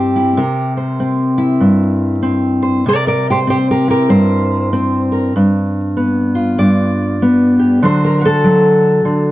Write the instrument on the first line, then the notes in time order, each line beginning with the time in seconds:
steel-string acoustic guitar
Already playing: G2 C4 E4 G4
0.16 E4
0.37 C3 A#4
0.77 C5
1.00 C4
1.38 E4
1.60 G2
2.23 C4
2.63 C5
2.86 C3 A#4 D5
3.07 A#4 D5
3.30 G4 C5
3.47 C4 G4 C5
3.71 G4 A#4
3.88 E4 G4 A#4
4.09 G2 C5
4.73 C4
5.12 A#4
5.36 G2
5.97 B3
6.35 F4
6.58 G2 D5
7.22 B3
7.59 G4
7.82 D3 F#3 F#4 C5
8.05 A#4
8.21 F#4
8.25 A4
8.44 F#3
9.05 D3